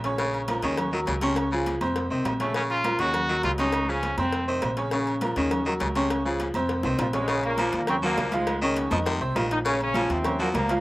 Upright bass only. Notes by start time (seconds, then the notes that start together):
Already playing: A#1
0.63 D#2
1.07 C#2
1.81 F2
2.10 C2
2.25 A#1
2.99 D#2
3.44 C#2
4.17 F2
4.63 A#1
5.36 D#2
5.81 C#2
6.55 F2
6.84 C2
6.99 A#1
7.73 D#2
8.17 C#2
8.91 F2
9.21 C2
9.36 A#1
10.09 D#2
10.54 C#2